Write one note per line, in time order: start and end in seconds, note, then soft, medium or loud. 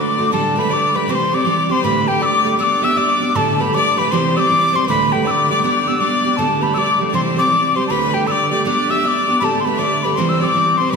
0.00 0.18 D3 medium
0.00 0.18 A3 soft
0.00 0.18 D4 medium
0.00 0.17 F#4 medium
0.00 0.31 D5 medium
0.00 0.32 D6 medium
0.18 0.31 D3 soft
0.18 0.32 A3 soft
0.18 0.32 D4 soft
0.18 0.32 F#4 soft
0.31 0.56 D2 medium
0.31 0.56 A2 medium
0.31 0.56 D3 medium
0.31 0.56 G3 medium
0.31 0.55 A3 medium
0.31 0.54 G4 medium
0.31 0.54 A4 medium
0.31 0.61 A5 medium
0.55 0.68 D3 soft
0.55 0.69 G3 soft
0.55 0.70 A3 soft
0.55 0.70 G4 soft
0.55 0.72 B4 medium
0.55 0.75 B5 medium
0.69 0.94 D3 medium
0.69 0.94 G3 medium
0.69 0.93 A3 medium
0.69 0.93 G4 medium
0.69 0.97 D5 medium
0.73 0.97 D6 medium
0.94 1.08 D3 soft
0.94 1.08 G3 soft
0.94 1.08 A3 soft
0.94 1.08 G4 soft
0.94 1.12 B4 medium
0.94 1.12 B5 medium
1.08 1.32 C3 medium
1.08 1.33 E3 medium
1.08 1.33 G3 medium
1.08 1.32 C4 medium
1.08 1.30 G4 medium
1.08 1.36 C5 medium
1.08 1.16 D6 medium
1.15 1.36 C6 medium
1.31 1.45 G3 soft
1.31 1.46 C4 soft
1.31 1.45 G4 medium
1.31 1.70 D5 medium
1.31 1.73 D6 loud
1.45 1.70 E3 medium
1.45 1.70 G3 medium
1.45 1.69 C4 medium
1.45 1.68 G4 medium
1.69 1.83 G3 soft
1.69 1.84 C4 soft
1.69 1.83 G4 soft
1.69 1.85 C5 medium
1.69 1.83 C6 medium
1.83 2.08 D2 medium
1.83 2.08 A2 medium
1.83 2.07 D3 medium
1.83 2.07 G3 medium
1.83 2.06 A3 medium
1.83 2.05 G4 medium
1.83 2.07 B4 medium
1.83 2.09 B5 loud
2.06 2.18 D3 soft
2.06 2.19 G3 soft
2.06 2.20 A3 soft
2.06 2.21 G4 soft
2.06 2.23 G4 medium
2.06 2.24 G5 medium
2.19 2.45 D3 medium
2.19 2.44 G3 medium
2.19 2.43 A3 medium
2.19 2.43 G4 medium
2.19 2.59 D5 medium
2.19 2.27 E6 medium
2.26 2.44 D6 loud
2.44 2.58 D3 soft
2.44 2.57 G3 soft
2.44 2.59 A3 soft
2.44 2.59 G4 soft
2.44 2.58 D6 medium
2.59 2.83 G3 medium
2.59 2.83 B3 medium
2.59 2.82 D4 medium
2.59 2.80 G4 medium
2.59 2.85 D5 medium
2.59 2.65 E6 loud
2.64 2.86 D6 loud
2.82 2.96 B3 soft
2.82 2.97 D4 soft
2.82 2.96 G4 medium
2.82 2.99 E5 medium
2.82 2.99 E6 medium
2.97 3.21 G3 medium
2.97 3.22 B3 medium
2.97 3.20 D4 medium
2.97 3.19 G4 medium
2.97 3.35 D5 medium
2.97 3.37 D6 loud
3.20 3.35 B3 soft
3.20 3.35 D4 soft
3.20 3.35 G4 soft
3.35 3.59 D2 medium
3.35 3.60 A2 medium
3.35 3.60 D3 medium
3.35 3.60 G3 medium
3.35 3.59 A3 medium
3.35 3.58 G4 medium
3.35 3.62 A4 medium
3.35 3.63 A5 loud
3.59 3.72 D3 soft
3.59 3.73 G3 soft
3.59 3.73 A3 medium
3.59 3.73 G4 soft
3.59 3.74 B4 medium
3.59 3.76 B5 medium
3.73 3.97 D3 medium
3.73 3.98 G3 medium
3.73 3.97 A3 medium
3.73 3.96 G4 medium
3.73 3.97 D5 medium
3.73 4.00 D6 medium
3.97 4.12 D3 soft
3.97 4.12 G3 soft
3.97 4.12 A3 soft
3.97 4.11 G4 medium
3.97 4.13 B4 medium
3.97 4.13 B5 medium
4.11 4.36 C3 medium
4.11 4.36 E3 medium
4.11 4.36 G3 medium
4.11 4.36 C4 medium
4.11 4.35 G4 medium
4.11 4.38 C5 medium
4.11 4.38 C6 loud
4.36 4.49 G3 soft
4.36 4.50 C4 soft
4.36 4.50 G4 medium
4.36 4.75 D5 medium
4.36 4.77 D6 loud
4.36 4.41 E6 loud
4.50 4.74 E3 medium
4.50 4.74 G3 medium
4.50 4.74 C4 medium
4.50 4.73 G4 medium
4.73 4.88 G3 soft
4.73 4.88 C4 soft
4.73 4.87 G4 soft
4.73 4.85 C5 medium
4.73 4.88 C6 medium
4.85 5.12 D2 medium
4.85 5.12 A2 medium
4.85 5.12 D3 medium
4.85 5.12 G3 medium
4.85 5.12 A3 medium
4.85 5.26 B4 medium
4.90 5.11 G4 medium
4.90 5.14 B5 loud
5.12 5.25 D3 soft
5.12 5.26 G3 soft
5.12 5.26 A3 soft
5.12 5.25 G4 soft
5.12 5.28 G5 medium
5.24 5.50 D3 medium
5.24 5.50 G3 medium
5.24 5.50 A3 medium
5.24 5.49 D5 medium
5.24 5.32 E6 medium
5.28 5.49 G4 medium
5.28 5.50 D6 medium
5.50 5.63 D3 soft
5.50 5.62 G3 soft
5.50 5.64 A3 soft
5.50 5.63 G4 medium
5.50 5.62 D5 medium
5.50 5.62 D6 medium
5.63 5.87 G3 medium
5.63 5.88 B3 medium
5.63 5.87 D4 medium
5.63 5.86 G4 medium
5.63 5.98 D5 medium
5.63 5.81 D6 medium
5.84 6.01 G4 medium
5.84 5.89 D6 medium
5.88 6.00 B3 soft
5.88 6.00 D4 soft
5.88 6.02 E6 medium
5.99 6.25 G3 medium
5.99 6.25 B3 medium
5.99 6.25 D4 medium
5.99 6.23 G4 medium
5.99 6.40 D5 medium
5.99 6.38 D6 medium
6.24 6.38 B3 soft
6.24 6.39 D4 soft
6.24 6.38 G4 soft
6.37 6.62 D2 medium
6.37 6.63 A2 medium
6.37 6.63 D3 medium
6.37 6.62 G3 medium
6.37 6.61 A3 medium
6.37 6.60 G4 medium
6.37 6.63 A4 medium
6.37 6.64 A5 loud
6.61 6.74 D3 soft
6.61 6.74 G3 soft
6.61 6.75 A3 soft
6.61 6.76 G4 soft
6.61 6.74 B4 medium
6.61 6.76 B5 medium
6.74 7.00 D3 medium
6.74 7.00 G3 medium
6.74 6.99 A3 medium
6.74 6.98 G4 medium
6.74 6.98 D5 medium
6.74 7.00 D6 medium
6.74 6.79 E6 medium
6.99 7.13 D3 soft
6.99 7.13 G3 soft
6.99 7.14 A3 soft
6.99 7.13 G4 soft
7.09 7.38 C3 medium
7.09 7.15 D5 medium
7.14 7.38 E3 medium
7.14 7.38 G3 medium
7.14 7.37 C4 medium
7.14 7.35 G4 medium
7.14 7.40 C5 medium
7.14 7.21 C6 medium
7.36 7.51 G3 soft
7.36 7.51 C4 soft
7.36 7.51 G4 medium
7.36 7.77 D5 medium
7.36 7.78 D6 loud
7.50 7.75 E3 soft
7.50 7.76 G3 medium
7.50 7.75 C4 medium
7.50 7.74 G4 medium
7.75 7.89 G3 soft
7.75 7.90 C4 soft
7.75 7.90 G4 soft
7.75 7.89 C5 medium
7.75 7.87 C6 medium
7.88 8.14 D2 medium
7.88 8.14 A2 medium
7.88 8.14 D3 medium
7.88 8.14 G3 medium
7.88 8.14 A3 medium
7.88 8.13 G4 medium
7.88 8.16 B4 medium
7.88 7.92 A5 medium
7.88 8.15 B5 medium
8.14 8.26 D3 soft
8.14 8.27 G3 soft
8.14 8.28 A3 medium
8.14 8.28 G4 medium
8.14 8.27 G4 medium
8.14 8.29 G5 medium
8.27 8.52 D3 medium
8.27 8.52 G3 medium
8.27 8.51 A3 medium
8.27 8.50 G4 medium
8.27 8.50 D5 medium
8.27 8.33 E6 medium
8.32 8.51 D6 medium
8.50 8.65 D3 soft
8.50 8.64 G3 soft
8.50 8.66 A3 soft
8.50 8.65 G4 medium
8.50 8.64 D5 medium
8.50 8.64 D6 medium
8.65 8.89 G3 medium
8.65 8.90 B3 medium
8.65 8.90 D4 medium
8.65 8.88 G4 medium
8.65 8.92 D5 medium
8.65 8.92 D6 loud
8.90 9.03 B3 soft
8.90 9.04 D4 soft
8.90 9.03 G4 medium
8.90 9.06 E5 medium
8.90 9.04 E6 medium
9.03 9.27 G3 medium
9.03 9.28 B3 medium
9.03 9.28 D4 medium
9.03 9.26 G4 medium
9.03 9.44 D5 medium
9.03 9.09 E6 medium
9.08 9.40 D6 medium
9.27 9.42 B3 soft
9.27 9.41 D4 soft
9.27 9.41 G4 soft
9.40 9.65 D2 medium
9.40 9.65 A2 medium
9.40 9.65 D3 medium
9.40 9.66 G3 medium
9.40 9.66 A3 medium
9.40 9.64 G4 medium
9.40 9.65 A4 medium
9.40 9.45 B5 medium
9.44 9.62 A5 medium
9.60 9.67 C6 medium
9.65 9.77 D3 soft
9.65 9.78 G3 soft
9.65 9.79 A3 soft
9.65 9.79 G4 medium
9.65 9.78 B4 medium
9.65 9.80 B5 medium
9.76 10.03 D3 medium
9.76 10.03 G3 medium
9.76 10.04 A3 medium
9.76 10.06 D5 medium
9.76 9.80 E5 medium
9.76 10.04 D6 medium
9.81 10.03 G4 medium
10.03 10.18 D3 soft
10.03 10.17 G3 soft
10.03 10.18 A3 soft
10.03 10.17 G4 medium
10.03 10.16 B4 medium
10.03 10.17 B5 medium
10.15 10.41 C3 medium
10.15 10.42 E3 medium
10.15 10.42 G3 medium
10.15 10.41 C4 medium
10.15 10.42 C5 medium
10.15 10.30 C6 medium
10.20 10.40 G4 medium
10.29 10.39 E6 medium
10.39 10.54 G3 soft
10.39 10.55 C4 soft
10.39 10.55 G4 medium
10.39 10.78 D5 medium
10.39 10.45 E6 medium
10.44 10.79 D6 loud
10.55 10.79 E3 medium
10.55 10.79 G3 medium
10.55 10.78 C4 medium
10.55 10.77 G4 medium
10.77 10.92 G3 soft
10.77 10.93 C4 soft
10.77 10.92 G4 medium
10.77 10.92 C5 medium
10.77 10.92 C6 medium
10.90 10.96 D2 medium
10.90 10.96 A2 medium
10.90 10.96 B4 medium
10.90 10.95 D6 medium